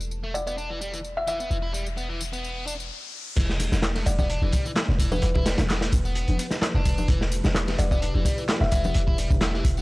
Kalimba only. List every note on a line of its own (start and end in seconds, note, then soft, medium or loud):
0.34 0.42 D5 medium
0.47 0.54 D5 medium
1.17 1.24 E5 medium
1.28 1.36 E5 medium
4.06 4.14 D5 medium
4.19 4.26 D5 medium
5.12 5.19 B4 medium
5.22 5.31 B4 medium
7.79 7.87 D5 medium
7.92 7.98 D5 medium
8.61 8.68 E5 medium
8.72 8.80 E5 medium